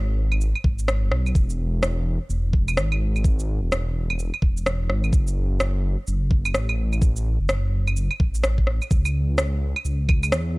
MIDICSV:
0, 0, Header, 1, 3, 480
1, 0, Start_track
1, 0, Key_signature, 4, "minor"
1, 0, Tempo, 472441
1, 1372, Time_signature, 4, 2, 24, 8
1, 10754, End_track
2, 0, Start_track
2, 0, Title_t, "Detuned saw bass"
2, 0, Program_c, 0, 39
2, 0, Note_on_c, 0, 32, 84
2, 543, Note_off_c, 0, 32, 0
2, 653, Note_on_c, 0, 32, 88
2, 1036, Note_on_c, 0, 30, 100
2, 1052, Note_off_c, 0, 32, 0
2, 1123, Note_off_c, 0, 30, 0
2, 1130, Note_on_c, 0, 35, 97
2, 1356, Note_off_c, 0, 35, 0
2, 1373, Note_on_c, 0, 28, 93
2, 2221, Note_off_c, 0, 28, 0
2, 2332, Note_on_c, 0, 28, 96
2, 2814, Note_on_c, 0, 32, 85
2, 2829, Note_off_c, 0, 28, 0
2, 3661, Note_off_c, 0, 32, 0
2, 3681, Note_on_c, 0, 28, 81
2, 4381, Note_off_c, 0, 28, 0
2, 4492, Note_on_c, 0, 28, 85
2, 4973, Note_on_c, 0, 32, 95
2, 4988, Note_off_c, 0, 28, 0
2, 5197, Note_off_c, 0, 32, 0
2, 5210, Note_on_c, 0, 30, 92
2, 6060, Note_off_c, 0, 30, 0
2, 6172, Note_on_c, 0, 30, 96
2, 6650, Note_on_c, 0, 33, 87
2, 6665, Note_off_c, 0, 30, 0
2, 7499, Note_off_c, 0, 33, 0
2, 7518, Note_on_c, 0, 30, 83
2, 8220, Note_off_c, 0, 30, 0
2, 8331, Note_on_c, 0, 33, 81
2, 8940, Note_off_c, 0, 33, 0
2, 9052, Note_on_c, 0, 37, 94
2, 9900, Note_off_c, 0, 37, 0
2, 10008, Note_on_c, 0, 37, 95
2, 10489, Note_on_c, 0, 40, 93
2, 10504, Note_off_c, 0, 37, 0
2, 10754, Note_off_c, 0, 40, 0
2, 10754, End_track
3, 0, Start_track
3, 0, Title_t, "Drums"
3, 322, Note_on_c, 9, 75, 55
3, 417, Note_on_c, 9, 82, 55
3, 423, Note_off_c, 9, 75, 0
3, 519, Note_off_c, 9, 82, 0
3, 563, Note_on_c, 9, 75, 45
3, 653, Note_on_c, 9, 36, 99
3, 665, Note_off_c, 9, 75, 0
3, 755, Note_off_c, 9, 36, 0
3, 801, Note_on_c, 9, 82, 54
3, 896, Note_off_c, 9, 82, 0
3, 896, Note_on_c, 9, 37, 98
3, 896, Note_on_c, 9, 82, 52
3, 998, Note_off_c, 9, 37, 0
3, 998, Note_off_c, 9, 82, 0
3, 1133, Note_on_c, 9, 37, 65
3, 1235, Note_off_c, 9, 37, 0
3, 1284, Note_on_c, 9, 75, 32
3, 1284, Note_on_c, 9, 82, 31
3, 1373, Note_on_c, 9, 36, 117
3, 1376, Note_off_c, 9, 82, 0
3, 1376, Note_on_c, 9, 82, 51
3, 1385, Note_off_c, 9, 75, 0
3, 1474, Note_off_c, 9, 36, 0
3, 1477, Note_off_c, 9, 82, 0
3, 1521, Note_on_c, 9, 82, 51
3, 1623, Note_off_c, 9, 82, 0
3, 1856, Note_on_c, 9, 37, 105
3, 1856, Note_on_c, 9, 82, 50
3, 1958, Note_off_c, 9, 37, 0
3, 1958, Note_off_c, 9, 82, 0
3, 2336, Note_on_c, 9, 82, 52
3, 2438, Note_off_c, 9, 82, 0
3, 2574, Note_on_c, 9, 36, 96
3, 2675, Note_off_c, 9, 36, 0
3, 2725, Note_on_c, 9, 75, 64
3, 2725, Note_on_c, 9, 82, 54
3, 2817, Note_off_c, 9, 82, 0
3, 2817, Note_on_c, 9, 37, 102
3, 2817, Note_on_c, 9, 82, 50
3, 2826, Note_off_c, 9, 75, 0
3, 2919, Note_off_c, 9, 37, 0
3, 2919, Note_off_c, 9, 82, 0
3, 2966, Note_on_c, 9, 75, 58
3, 3067, Note_off_c, 9, 75, 0
3, 3209, Note_on_c, 9, 75, 34
3, 3209, Note_on_c, 9, 82, 29
3, 3295, Note_on_c, 9, 36, 111
3, 3298, Note_off_c, 9, 82, 0
3, 3298, Note_on_c, 9, 82, 51
3, 3311, Note_off_c, 9, 75, 0
3, 3397, Note_off_c, 9, 36, 0
3, 3399, Note_off_c, 9, 82, 0
3, 3449, Note_on_c, 9, 82, 49
3, 3551, Note_off_c, 9, 82, 0
3, 3781, Note_on_c, 9, 37, 102
3, 3781, Note_on_c, 9, 82, 53
3, 3882, Note_off_c, 9, 37, 0
3, 3882, Note_off_c, 9, 82, 0
3, 4166, Note_on_c, 9, 75, 61
3, 4259, Note_on_c, 9, 82, 53
3, 4268, Note_off_c, 9, 75, 0
3, 4360, Note_off_c, 9, 82, 0
3, 4407, Note_on_c, 9, 75, 48
3, 4493, Note_on_c, 9, 36, 93
3, 4508, Note_off_c, 9, 75, 0
3, 4594, Note_off_c, 9, 36, 0
3, 4644, Note_on_c, 9, 82, 52
3, 4738, Note_off_c, 9, 82, 0
3, 4738, Note_on_c, 9, 37, 94
3, 4738, Note_on_c, 9, 82, 49
3, 4840, Note_off_c, 9, 37, 0
3, 4840, Note_off_c, 9, 82, 0
3, 4974, Note_on_c, 9, 37, 61
3, 5076, Note_off_c, 9, 37, 0
3, 5120, Note_on_c, 9, 75, 36
3, 5120, Note_on_c, 9, 82, 28
3, 5210, Note_on_c, 9, 36, 110
3, 5213, Note_off_c, 9, 82, 0
3, 5213, Note_on_c, 9, 82, 53
3, 5221, Note_off_c, 9, 75, 0
3, 5311, Note_off_c, 9, 36, 0
3, 5314, Note_off_c, 9, 82, 0
3, 5357, Note_on_c, 9, 82, 54
3, 5459, Note_off_c, 9, 82, 0
3, 5691, Note_on_c, 9, 37, 98
3, 5691, Note_on_c, 9, 82, 54
3, 5792, Note_off_c, 9, 37, 0
3, 5792, Note_off_c, 9, 82, 0
3, 6169, Note_on_c, 9, 82, 54
3, 6270, Note_off_c, 9, 82, 0
3, 6408, Note_on_c, 9, 36, 96
3, 6510, Note_off_c, 9, 36, 0
3, 6556, Note_on_c, 9, 75, 71
3, 6556, Note_on_c, 9, 82, 55
3, 6650, Note_off_c, 9, 82, 0
3, 6650, Note_on_c, 9, 37, 91
3, 6650, Note_on_c, 9, 82, 52
3, 6658, Note_off_c, 9, 75, 0
3, 6751, Note_off_c, 9, 37, 0
3, 6751, Note_off_c, 9, 82, 0
3, 6798, Note_on_c, 9, 75, 66
3, 6900, Note_off_c, 9, 75, 0
3, 7038, Note_on_c, 9, 75, 35
3, 7038, Note_on_c, 9, 82, 30
3, 7129, Note_on_c, 9, 36, 111
3, 7130, Note_off_c, 9, 82, 0
3, 7130, Note_on_c, 9, 82, 56
3, 7139, Note_off_c, 9, 75, 0
3, 7230, Note_off_c, 9, 36, 0
3, 7232, Note_off_c, 9, 82, 0
3, 7278, Note_on_c, 9, 82, 55
3, 7379, Note_off_c, 9, 82, 0
3, 7610, Note_on_c, 9, 37, 100
3, 7610, Note_on_c, 9, 82, 56
3, 7712, Note_off_c, 9, 37, 0
3, 7712, Note_off_c, 9, 82, 0
3, 8000, Note_on_c, 9, 75, 62
3, 8000, Note_on_c, 9, 82, 32
3, 8092, Note_off_c, 9, 82, 0
3, 8092, Note_on_c, 9, 82, 56
3, 8102, Note_off_c, 9, 75, 0
3, 8193, Note_off_c, 9, 82, 0
3, 8236, Note_on_c, 9, 75, 52
3, 8330, Note_on_c, 9, 36, 98
3, 8338, Note_off_c, 9, 75, 0
3, 8432, Note_off_c, 9, 36, 0
3, 8479, Note_on_c, 9, 82, 60
3, 8571, Note_off_c, 9, 82, 0
3, 8571, Note_on_c, 9, 37, 99
3, 8571, Note_on_c, 9, 82, 54
3, 8672, Note_off_c, 9, 37, 0
3, 8672, Note_off_c, 9, 82, 0
3, 8718, Note_on_c, 9, 36, 57
3, 8808, Note_on_c, 9, 37, 60
3, 8819, Note_off_c, 9, 36, 0
3, 8910, Note_off_c, 9, 37, 0
3, 8959, Note_on_c, 9, 75, 36
3, 8959, Note_on_c, 9, 82, 31
3, 9051, Note_off_c, 9, 82, 0
3, 9051, Note_on_c, 9, 36, 118
3, 9051, Note_on_c, 9, 82, 58
3, 9060, Note_off_c, 9, 75, 0
3, 9152, Note_off_c, 9, 36, 0
3, 9153, Note_off_c, 9, 82, 0
3, 9198, Note_on_c, 9, 75, 54
3, 9198, Note_on_c, 9, 82, 57
3, 9299, Note_off_c, 9, 75, 0
3, 9299, Note_off_c, 9, 82, 0
3, 9530, Note_on_c, 9, 37, 105
3, 9530, Note_on_c, 9, 82, 58
3, 9631, Note_off_c, 9, 37, 0
3, 9631, Note_off_c, 9, 82, 0
3, 9918, Note_on_c, 9, 75, 65
3, 10009, Note_on_c, 9, 82, 58
3, 10020, Note_off_c, 9, 75, 0
3, 10110, Note_off_c, 9, 82, 0
3, 10248, Note_on_c, 9, 75, 70
3, 10250, Note_on_c, 9, 36, 105
3, 10350, Note_off_c, 9, 75, 0
3, 10352, Note_off_c, 9, 36, 0
3, 10396, Note_on_c, 9, 75, 73
3, 10396, Note_on_c, 9, 82, 58
3, 10487, Note_off_c, 9, 82, 0
3, 10487, Note_on_c, 9, 37, 105
3, 10487, Note_on_c, 9, 82, 56
3, 10497, Note_off_c, 9, 75, 0
3, 10589, Note_off_c, 9, 37, 0
3, 10589, Note_off_c, 9, 82, 0
3, 10754, End_track
0, 0, End_of_file